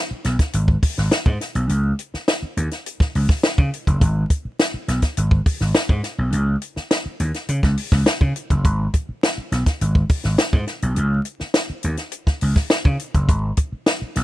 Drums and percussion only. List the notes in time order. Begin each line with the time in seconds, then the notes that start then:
0.24 snare, closed hi-hat
0.39 kick, snare, closed hi-hat
0.53 closed hi-hat
0.68 kick
0.83 kick, open hi-hat
0.98 snare
1.11 snare, closed hi-hat
1.26 kick
1.41 snare, closed hi-hat
1.55 closed hi-hat
1.69 closed hi-hat
1.99 closed hi-hat
2.14 snare
2.28 snare, closed hi-hat
2.57 closed hi-hat
2.71 snare, closed hi-hat
2.86 closed hi-hat
3.00 kick, snare
3.15 open hi-hat
3.29 kick, snare
3.43 snare, closed hi-hat
3.58 kick
3.73 closed hi-hat
3.87 kick, closed hi-hat
4.01 kick, closed hi-hat
4.30 kick, closed hi-hat
4.60 snare, closed hi-hat
4.88 snare, closed hi-hat
5.02 kick, snare, closed hi-hat
5.17 closed hi-hat
5.31 kick
5.46 kick, open hi-hat
5.60 snare
5.75 snare, closed hi-hat
5.89 kick
6.03 snare, closed hi-hat
6.33 closed hi-hat
6.62 closed hi-hat
6.76 snare
6.91 snare, closed hi-hat
7.20 closed hi-hat
7.34 snare, closed hi-hat
7.48 closed hi-hat
7.63 kick, snare
7.77 open hi-hat
7.92 kick, snare
8.06 snare, closed hi-hat
8.21 kick
8.36 closed hi-hat
8.50 kick, closed hi-hat
8.65 kick, closed hi-hat
8.94 kick, closed hi-hat
9.23 snare, closed hi-hat
9.52 snare, closed hi-hat
9.66 kick, snare, closed hi-hat
9.81 closed hi-hat
9.95 kick
10.09 kick, open hi-hat
10.24 snare
10.38 snare, closed hi-hat
10.53 kick
10.67 snare, closed hi-hat
10.82 closed hi-hat
10.96 closed hi-hat
11.25 closed hi-hat
11.40 snare
11.54 snare, closed hi-hat
11.83 closed hi-hat
11.97 snare, closed hi-hat
12.12 closed hi-hat
12.27 kick, snare
12.41 open hi-hat
12.56 kick, snare
12.70 snare, closed hi-hat
12.85 kick
12.99 closed hi-hat
13.14 kick, closed hi-hat
13.29 kick, closed hi-hat
13.57 kick, closed hi-hat
13.86 snare, closed hi-hat
14.15 snare, closed hi-hat